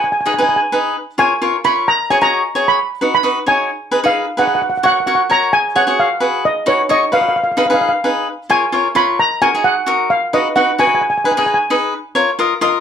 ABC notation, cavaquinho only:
X:1
M:4/4
L:1/16
Q:"Swing 16ths" 1/4=131
K:F#
V:1 name="Cavaquinho"
z2 [DGB] [DGB]2 z [DGB]2 z2 [EAc] z [EAc] z [EAc]2 | z2 [FGc] [FGc]2 z [FGc]2 z2 [DFB] z [DFB] z [DFc]2 | z2 [DGB] [DGB]2 z [DGB]2 z2 [FAc] z [FAc] z [FAc]2 | z2 [FGc] [FGc]2 z [FGB]2 z2 [DFB] z [DFc] z [DFB]2 |
z2 [DGB] [DGB]2 z [DGB]2 z2 [EAc] z [EAc] z [EAc]2 | z2 [DFA] [DFG]2 z [DFA]2 z2 [DFB] z [DFB] z [DFB]2 | z2 [DGB] [DGB]2 z [DGB]2 z2 [EAc] z [EAd] z [EAd]2 |]